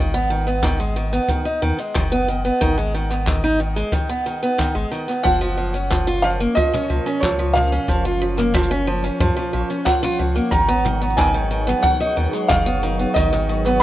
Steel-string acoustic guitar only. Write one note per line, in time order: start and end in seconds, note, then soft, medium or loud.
0.00 0.12 D#3 medium
0.14 0.29 B3 loud
0.30 0.45 D#3 medium
0.47 0.62 B3 medium
0.63 0.78 D#3 loud
0.80 0.95 G#3 medium
0.96 1.11 D#3 medium
1.13 1.28 B3 medium
1.29 1.44 D#3 medium
1.45 1.60 D#4 medium
1.62 1.77 D#3 medium
1.79 1.94 G#3 medium
1.95 2.10 D#3 medium
2.12 2.27 B3 medium
2.28 2.43 D#3 medium
2.45 2.60 B3 medium
2.61 2.76 D#3 loud
2.78 2.93 G#3 medium
2.94 3.09 D#3 medium
3.11 3.25 B3 medium
3.27 3.42 D#3 medium
3.44 3.59 D#4 loud
3.60 3.75 D#3 medium
3.76 3.91 G#3 medium
3.93 4.08 D#3 medium
4.09 4.24 B3 medium
4.26 4.41 D#3 medium
4.43 4.57 B3 medium
4.58 4.73 D#3 medium
4.75 4.90 G#3 medium
4.92 5.07 D#3 medium
5.08 5.23 B3 medium
5.24 5.39 F3 medium
5.41 5.56 F3 medium
5.58 5.73 F3 medium
5.74 5.89 C#4 medium
5.90 6.05 F3 medium
6.07 6.22 F4 loud
6.24 6.39 F3 medium
6.40 6.55 A#3 medium
6.57 6.72 F3 medium
6.73 6.88 C#4 medium
6.90 7.05 F3 medium
7.06 7.21 C#4 medium
7.23 7.38 F3 medium
7.39 7.54 F3 medium
7.56 7.70 F3 medium
7.72 7.87 C#4 medium
7.89 8.03 F3 medium
8.05 8.20 F4 medium
8.22 8.36 F3 medium
8.38 8.53 A#3 medium
8.54 8.69 F3 loud
8.71 8.86 C#4 loud
8.87 9.02 F3 medium
9.04 9.19 C#4 medium
9.20 9.35 F3 medium
9.37 9.52 F3 medium
9.53 9.68 F3 medium
9.70 9.85 C#4 medium
9.86 10.01 F3 medium
10.03 10.18 F4 loud
10.19 10.34 F3 medium
10.36 10.51 A#3 medium
10.52 10.67 D#3 medium
10.68 10.83 B3 loud
10.85 11.00 D#3 medium
11.02 11.17 B3 medium
11.18 11.33 D#3 loud
11.34 11.49 D#3 medium
11.51 11.66 D#3 medium
11.67 11.82 B3 medium
11.84 11.99 D#3 medium
12.00 12.15 D#4 loud
12.17 12.32 D#3 medium
12.33 12.48 G#3 medium
12.50 12.65 D#3 loud
12.66 12.81 B3 loud
12.83 12.98 D#3 medium
12.99 13.14 B3 medium
13.16 13.31 D#3 loud
13.33 13.47 D#3 medium
13.49 13.64 D#3 medium
13.66 13.81 B3 medium